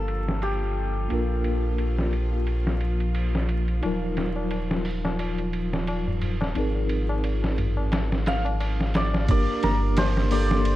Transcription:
0.00 1.07 G1 medium
0.00 9.29 F3 medium
0.00 1.06 A#3 medium
0.00 1.07 D4 medium
0.00 9.30 F4 medium
0.00 1.08 G4 medium
0.00 2.67 A4 medium
0.08 ride medium
0.28 snare soft
0.42 3.56 G4 medium
0.42 ride medium
1.08 3.81 A#1 medium
1.08 3.79 A#3 medium
1.08 3.79 D4 medium
1.08 3.80 F4 medium
1.08 ride medium
1.13 3.81 A#4 medium
1.44 ride medium
1.78 ride medium
1.99 snare soft
2.13 ride medium
2.47 ride medium
2.67 snare soft
2.81 ride medium
3.00 ride soft
3.15 ride medium
3.35 snare soft
3.49 ride medium
3.68 ride soft
3.82 6.53 D#1 medium
3.82 6.53 F#3 medium
3.82 6.52 D#4 medium
3.82 6.52 F4 medium
3.82 ride medium
3.82 tabla na medium
3.86 6.54 A#4 medium
4.03 tabla na soft
4.17 snare soft
4.17 ride medium
4.36 tabla na medium
4.51 ride medium
4.51 tabla na medium
4.71 snare soft
4.71 tabla na soft
4.85 open hi-hat medium
5.05 snare soft
5.05 tabla na medium
5.19 ride medium
5.19 tabla na medium
5.38 ride soft
5.38 tabla na soft
5.53 ride medium
5.73 snare soft
5.73 tabla na medium
5.87 ride medium
5.87 tabla na medium
6.07 tabla na soft
6.07 tabla ge medium
6.21 ride medium
6.21 tabla ge medium
6.41 snare soft
6.41 tabla na medium
6.55 9.26 G#1 medium
6.55 9.25 C4 medium
6.55 9.25 D#4 medium
6.55 9.26 G#4 medium
6.55 ride medium
6.55 tabla na medium
6.59 9.27 A#4 medium
6.75 tabla na soft
6.89 ride medium
7.09 tabla na medium
7.24 ride medium
7.24 tabla na medium
7.42 snare soft
7.42 tabla na soft
7.58 ride medium
7.58 tabla ge medium
7.77 tabla na medium
7.92 snare medium
7.92 ride medium
7.92 tabla na medium
8.10 snare soft
8.10 tabla na soft
8.26 10.50 F5 medium
8.26 snare loud
8.26 ride medium
8.45 ride soft
8.45 tabla na medium
8.60 ride medium
8.60 tabla na medium
8.81 snare soft
8.81 tabla na soft
8.94 9.30 D5 medium
8.94 snare loud
8.94 ride medium
9.14 snare soft
9.14 tabla na medium
9.28 9.46 G1 loud
9.28 10.27 A#3 medium
9.28 10.28 D4 medium
9.28 10.29 G4 medium
9.28 10.29 A#4 loud
9.28 10.31 D5 loud
9.28 kick loud
9.28 ride medium
9.63 10.76 G1 loud
9.63 9.72 A#4 medium
9.63 snare medium
9.63 ride medium
9.97 10.76 C5 medium
9.97 snare loud
9.97 ride medium
9.97 tabla na medium
10.17 snare medium
10.31 10.52 A#3 medium
10.31 10.52 D4 medium
10.31 10.52 G4 medium
10.31 10.53 A4 medium
10.31 10.76 D5 loud
10.31 open hi-hat medium
10.51 snare soft
10.65 ride medium

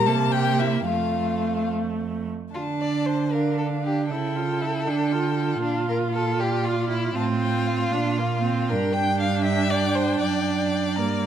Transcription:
0.06 0.88 C3 medium
0.06 0.88 A#3 medium
0.06 0.14 A4 medium
0.06 0.34 A5 medium
0.32 0.62 G4 medium
0.32 0.61 G5 medium
0.59 0.88 E4 medium
0.59 0.85 E5 medium
0.86 2.30 F2 soft
0.86 2.30 A3 medium
0.86 1.70 F4 soft
0.86 1.69 F5 medium
2.52 4.12 D3 soft
2.52 3.28 D4 soft
2.52 2.62 F4 soft
2.52 3.35 A5 soft
2.81 3.07 D5 medium
3.06 3.33 C5 medium
3.32 4.12 D4 soft
3.32 3.58 A#4 medium
3.32 4.10 F5 soft
3.58 3.66 A4 medium
3.84 4.09 G4 medium
4.10 4.89 C#3 soft
4.10 4.37 E4 soft
4.10 5.61 A4 medium
4.10 5.61 G5 soft
4.36 4.63 F4 soft
4.62 4.89 E4 soft
4.87 5.64 D3 soft
4.87 5.13 D4 soft
5.12 5.37 F4 soft
5.38 7.13 F4 medium
5.62 7.14 A#2 soft
5.62 5.88 D4 medium
5.62 6.42 F5 soft
5.89 5.97 A#4 medium
6.13 6.42 A4 medium
6.40 6.66 G4 medium
6.40 7.15 D5 soft
6.65 6.89 F4 medium
6.89 7.16 E4 medium
7.15 7.92 A2 medium
7.15 7.94 C4 medium
7.15 8.71 F4 medium
7.15 7.24 A5 soft
7.42 7.69 G5 medium
7.67 7.91 F5 medium
7.91 8.72 A#2 medium
7.91 8.19 D4 medium
7.91 8.69 F5 soft
8.18 8.42 A#3 medium
8.43 8.71 C4 medium
8.68 10.21 G2 medium
8.68 11.00 D4 medium
8.68 8.95 A#4 medium
8.68 10.98 G5 medium
8.93 9.19 G5 medium
9.19 9.44 F5 medium
9.44 9.71 E5 medium
9.70 9.97 D5 medium
9.95 10.20 C5 medium
10.21 10.99 F#2 medium
10.21 11.26 D5 medium
10.97 11.26 G2 soft
10.97 11.26 A#3 soft
10.97 11.26 A#5 soft

